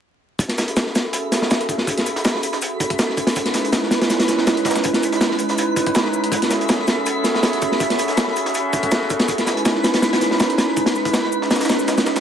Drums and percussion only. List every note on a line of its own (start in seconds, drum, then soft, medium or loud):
0.39 kick medium
0.39 closed hi-hat medium
0.39 shaker medium
0.48 snare soft
0.48 closed hi-hat soft
0.58 snare soft
0.58 closed hi-hat medium
0.58 shaker medium
0.68 closed hi-hat soft
0.77 snare medium
0.77 snare loud
0.77 closed hi-hat medium
0.77 shaker medium
0.86 snare soft
0.95 snare medium
0.95 closed hi-hat medium
0.95 shaker medium
1.13 closed hi-hat medium
1.13 shaker medium
1.32 snare medium
1.32 closed hi-hat medium
1.32 shaker medium
1.42 snare soft
1.51 snare loud
1.51 closed hi-hat medium
1.51 shaker medium
1.60 snare soft
1.60 closed hi-hat soft
1.69 kick medium
1.69 closed hi-hat medium
1.69 shaker medium
1.78 snare soft
1.87 kick medium
1.87 closed hi-hat medium
1.87 shaker medium
1.98 snare soft
1.98 closed hi-hat soft
2.06 closed hi-hat medium
2.06 shaker medium
2.16 snare soft
2.16 closed hi-hat soft
2.25 snare loud
2.25 closed hi-hat medium
2.25 shaker medium
2.35 snare soft
2.43 closed hi-hat medium
2.43 shaker medium
2.53 snare soft
2.53 closed hi-hat soft
2.62 closed hi-hat medium
2.62 shaker medium
2.80 kick medium
2.80 closed hi-hat medium
2.80 shaker medium
2.90 kick medium
2.90 closed hi-hat soft
2.99 snare medium
2.99 snare loud
2.99 closed hi-hat medium
2.99 shaker medium
3.09 snare soft
3.17 kick medium
3.17 closed hi-hat medium
3.17 shaker medium
3.27 snare medium
3.27 closed hi-hat medium
3.27 closed hi-hat soft
3.36 kick loud
3.36 closed hi-hat medium
3.36 shaker medium
3.45 snare soft
3.45 closed hi-hat soft
3.54 snare medium
3.54 snare soft
3.54 closed hi-hat medium
3.54 shaker medium
3.65 closed hi-hat soft
3.73 snare loud
3.73 closed hi-hat medium
3.73 shaker medium
3.83 snare soft
3.91 snare loud
3.91 closed hi-hat medium
3.91 shaker medium
4.01 snare medium
4.01 closed hi-hat medium
4.10 snare medium
4.10 closed hi-hat medium
4.10 shaker medium
4.19 snare medium
4.19 closed hi-hat medium
4.28 snare soft
4.28 closed hi-hat medium
4.28 shaker medium
4.38 snare soft
4.47 snare loud
4.47 closed hi-hat medium
4.47 shaker medium
4.57 snare soft
4.57 closed hi-hat soft
4.65 kick medium
4.65 snare medium
4.65 closed hi-hat medium
4.65 shaker medium
4.71 snare medium
4.71 shaker medium
4.75 snare medium
4.75 snare soft
4.75 shaker medium
4.84 kick loud
4.84 closed hi-hat medium
4.84 shaker medium
4.93 snare medium
4.93 closed hi-hat soft
5.03 closed hi-hat medium
5.03 shaker medium
5.12 snare soft
5.12 closed hi-hat soft
5.21 snare medium
5.21 snare loud
5.21 closed hi-hat medium
5.21 shaker medium
5.31 snare soft
5.39 closed hi-hat medium
5.39 shaker medium
5.49 snare soft
5.49 closed hi-hat soft
5.58 closed hi-hat medium
5.58 shaker medium
5.76 kick medium
5.76 closed hi-hat medium
5.76 shaker medium
5.86 kick medium
5.86 closed hi-hat soft
5.95 snare loud
5.95 closed hi-hat medium
5.95 shaker medium
6.05 snare soft
6.14 shaker medium
6.24 closed hi-hat soft
6.32 kick loud
6.32 closed hi-hat medium
6.32 shaker medium
6.42 snare soft
6.42 closed hi-hat soft
6.50 snare soft
6.50 snare medium
6.50 closed hi-hat medium
6.50 shaker medium
6.61 closed hi-hat soft
6.69 snare loud
6.69 closed hi-hat medium
6.69 shaker medium
6.79 snare soft
6.88 snare loud
6.88 closed hi-hat medium
6.88 shaker medium
7.06 closed hi-hat medium
7.06 shaker medium
7.24 snare medium
7.24 closed hi-hat medium
7.24 shaker medium
7.35 snare soft
7.43 snare loud
7.43 closed hi-hat medium
7.43 shaker medium
7.53 snare soft
7.53 closed hi-hat soft
7.62 kick medium
7.62 closed hi-hat medium
7.62 shaker medium
7.72 snare soft
7.80 kick medium
7.80 closed hi-hat medium
7.80 shaker medium
7.90 snare soft
7.90 closed hi-hat soft
7.99 closed hi-hat medium
7.99 shaker medium
8.08 snare soft
8.08 closed hi-hat soft
8.17 snare loud
8.17 closed hi-hat medium
8.17 shaker medium
8.27 snare soft
8.36 closed hi-hat medium
8.36 shaker medium
8.46 snare soft
8.46 closed hi-hat soft
8.55 closed hi-hat medium
8.55 shaker medium
8.73 kick medium
8.73 closed hi-hat medium
8.73 shaker medium
8.83 kick medium
8.83 closed hi-hat soft
8.91 snare loud
8.91 closed hi-hat medium
8.91 shaker medium
9.02 snare soft
9.10 kick medium
9.10 closed hi-hat medium
9.10 shaker medium
9.20 snare medium
9.20 closed hi-hat medium
9.20 closed hi-hat soft
9.28 kick medium
9.28 closed hi-hat medium
9.28 shaker medium
9.38 snare soft
9.38 closed hi-hat soft
9.46 snare soft
9.46 closed hi-hat medium
9.46 shaker medium
9.57 closed hi-hat soft
9.65 snare loud
9.65 closed hi-hat medium
9.65 shaker medium
9.75 snare soft
9.84 snare medium
9.84 closed hi-hat medium
9.84 shaker medium
9.94 snare medium
9.94 closed hi-hat medium
10.02 snare loud
10.02 closed hi-hat medium
10.02 shaker medium
10.13 snare medium
10.13 closed hi-hat medium
10.21 snare soft
10.21 closed hi-hat medium
10.21 shaker medium
10.31 snare soft
10.40 snare loud
10.40 closed hi-hat medium
10.40 shaker medium
10.49 snare soft
10.49 closed hi-hat soft
10.58 snare loud
10.58 closed hi-hat medium
10.58 shaker medium
10.68 snare soft
10.76 kick medium
10.76 closed hi-hat medium
10.76 shaker medium
10.86 snare medium
10.86 closed hi-hat medium
10.86 closed hi-hat soft
10.96 snare soft
10.96 shaker medium
11.05 kick medium
11.05 snare soft
11.05 closed hi-hat medium
11.13 snare medium
11.13 snare loud
11.13 closed hi-hat medium
11.13 shaker medium
11.23 snare soft
11.33 shaker medium
11.42 snare soft
11.51 snare loud
11.51 snare medium
11.51 closed hi-hat medium
11.51 shaker medium
11.56 snare medium
11.56 shaker medium
11.61 snare medium
11.61 closed hi-hat medium
11.61 shaker medium
11.65 snare medium
11.65 shaker medium
11.69 snare medium
11.69 closed hi-hat medium
11.69 shaker medium
11.79 snare soft
11.79 shaker medium
11.87 snare soft
11.87 snare medium
11.87 closed hi-hat medium
11.87 shaker medium
11.98 snare medium
11.98 snare soft
11.98 closed hi-hat medium
11.98 shaker medium
12.06 snare medium
12.06 snare soft
12.06 shaker medium
12.16 snare soft
12.16 snare medium
12.16 closed hi-hat medium
12.16 shaker medium